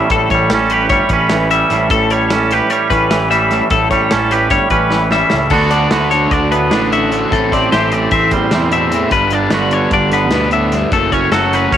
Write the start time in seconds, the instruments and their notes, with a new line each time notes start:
Already playing: clean electric guitar A2 E3 G3 C#4 G4 E5
0.10 picked electric bass A1, clean electric guitar A2 A4, kick, closed hi-hat
0.30 picked electric bass A1, clean electric guitar G3 C#5, kick, closed hi-hat
0.50 picked electric bass A1, clean electric guitar A4, snare, closed hi-hat
0.54 clean electric guitar C#4
0.70 clean electric guitar G4 B4, closed hi-hat
0.89 picked electric bass G1, clean electric guitar G3 C#5, kick, snare, closed hi-hat
1.09 picked electric bass A1, clean electric guitar C#4 B4, kick, closed hi-hat
1.29 clean electric guitar E3, snare, closed hi-hat
1.51 clean electric guitar G3 E5, snare, closed hi-hat
1.70 picked electric bass A1, clean electric guitar A2, snare, closed hi-hat
1.90 picked electric bass A1, clean electric guitar A2 A4, kick, closed hi-hat
2.10 clean electric guitar G3 C#5, closed hi-hat
2.30 clean electric guitar C#4 A4, snare, closed hi-hat
2.51 clean electric guitar G4 B4, snare, closed hi-hat
2.70 clean electric guitar G3 C#5, closed hi-hat
2.90 picked electric bass A1, clean electric guitar C#4 B4, kick, snare, closed hi-hat
3.11 clean electric guitar E3, snare, closed hi-hat
3.31 clean electric guitar G3 E5, snare, closed hi-hat
3.51 clean electric guitar A2, snare, closed hi-hat
3.70 picked electric bass A1, clean electric guitar A2 A4, kick, closed hi-hat
3.91 picked electric bass A1, clean electric guitar G3 C#5, kick, snare, closed hi-hat
4.11 picked electric bass A1, clean electric guitar C#4 A4, snare, closed hi-hat
4.31 clean electric guitar G4 B4, snare, closed hi-hat
4.50 picked electric bass G1, clean electric guitar G3 C#5, kick, snare, closed hi-hat
4.70 picked electric bass A1, clean electric guitar C#4 B4, kick, closed hi-hat
4.91 clean electric guitar E3, snare
5.11 clean electric guitar G3 E5, snare
5.30 picked electric bass C#2, clean electric guitar A2, snare
5.50 clean electric guitar D2 D3 B3 D4 F#4 A4, picked electric bass D2, overdriven electric guitar D3 A3 D4 F#4, kick, crash
5.54 overdriven electric guitar A4
5.71 clean electric guitar D4 D5, overdriven electric guitar D4 F#4 A4, closed hi-hat
5.90 picked electric bass D2, clean electric guitar D3 F#4 B4, overdriven electric guitar A3 D4 F#4 A4, snare, closed hi-hat
6.11 overdriven electric guitar D4 F#4 A4, clean electric guitar C#5, closed hi-hat
6.31 picked electric bass D2, clean electric guitar D4 D5, kick, closed hi-hat
6.51 clean electric guitar A2 B3 B4, closed hi-hat
6.71 picked electric bass A1, overdriven electric guitar D3 A3 D4 F#4, clean electric guitar D4, snare, closed hi-hat
6.75 overdriven electric guitar A4
6.92 overdriven electric guitar D4 F#4 A4, clean electric guitar F#4 E5, closed hi-hat
7.12 clean electric guitar D2, overdriven electric guitar D3 A3 D4 F#4 A4, closed hi-hat
7.30 picked electric bass A1, clean electric guitar A2 A4, overdriven electric guitar A2 E3 A3 C4, kick, closed hi-hat
7.35 overdriven electric guitar E4
7.51 overdriven electric guitar A3 C4 E4, clean electric guitar C4 D5, kick, snare, closed hi-hat
7.72 picked electric bass A1, overdriven electric guitar E3 A3 C4 E4, clean electric guitar E3 G4 C5, snare, closed hi-hat
7.90 overdriven electric guitar A3 C4 E4, clean electric guitar D5, closed hi-hat
8.11 picked electric bass A1, clean electric guitar C4 E5, kick, closed hi-hat
8.31 clean electric guitar E2 G3 C5, kick, closed hi-hat
8.51 picked electric bass E2, overdriven electric guitar A2 E3 A3 C4 E4, clean electric guitar C3, snare, closed hi-hat
8.71 clean electric guitar B2 E5, overdriven electric guitar A3 C4 E4, closed hi-hat
8.92 overdriven electric guitar A2 E3 A3 C4 E4, clean electric guitar A2, closed hi-hat
9.11 picked electric bass G1, overdriven electric guitar G2 D3 G3 B3 D4, clean electric guitar G2 B4, kick, closed hi-hat
9.30 overdriven electric guitar G3 B3 D4, clean electric guitar D4 D5, closed hi-hat
9.50 picked electric bass G1, overdriven electric guitar D3 G3 B3 D4, clean electric guitar D3 F#4 B4, snare, closed hi-hat
9.71 overdriven electric guitar G3 B3 D4, clean electric guitar C#5, closed hi-hat
9.91 picked electric bass G1, clean electric guitar D4 D5, kick, closed hi-hat
10.12 clean electric guitar D3 B3 B4, snare, closed hi-hat
10.31 picked electric bass D2, overdriven electric guitar G2 D3 G3 B3 D4, clean electric guitar B2, snare, closed hi-hat
10.51 clean electric guitar A2 E5, overdriven electric guitar G3 B3 D4, closed hi-hat
10.72 clean electric guitar G2, overdriven electric guitar G2 D3 G3 B3 D4, snare, closed hi-hat
10.92 picked electric bass F#1, overdriven electric guitar F#2 C#3 F#3 A3 C#4, clean electric guitar F#2 A4, kick, closed hi-hat
11.11 overdriven electric guitar F#3 A3 C#4, clean electric guitar C#4 C#5, kick, closed hi-hat
11.32 picked electric bass F#1, overdriven electric guitar C#3 F#3 A3 C#4, clean electric guitar F#3 F#4 A4, snare, closed hi-hat
11.53 overdriven electric guitar F#3 A3 C#4, clean electric guitar B4, snare, closed hi-hat
11.72 picked electric bass F#1, clean electric guitar C#4 C#5, kick, closed hi-hat